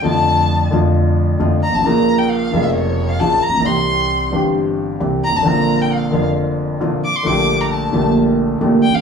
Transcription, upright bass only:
\new Staff \with { instrumentName = "Upright bass" } { \clef bass \time 4/4 \key bes \lydian \tempo 4 = 133 f,4~ f,16. r32 f,4~ f,16. r32 f,16. r16 g,,32 aes,,32 a,,32 | bes,,4~ bes,,16. r32 f,,4~ f,,16. r32 bes,,16. r16 a,,32 bes,,32 b,,32 | c,4~ c,16. r32 g,,4~ g,,16. r32 c,16. r16 g,,32 aes,,32 a,,32 | bes,,4~ bes,,16. r32 f,,4~ f,,16. r32 bes,,16. r8 r32 |
bes,,4~ bes,,16. r32 bes,,4~ bes,,16. r32 bes,,16. r16 a,,32 bes,,32 r32 | }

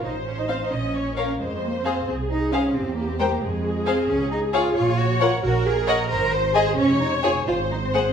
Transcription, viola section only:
\new Staff \with { instrumentName = "Viola section" } { \time 6/8 \key f \phrygian \tempo 4. = 89 c''4. ees''8 des''8 bes'8 | c''4. aes'4. | g'4. aes'4.~ | \key des \major aes'4. des''4. |
bes'4. c''4. | des''4. c''4. | }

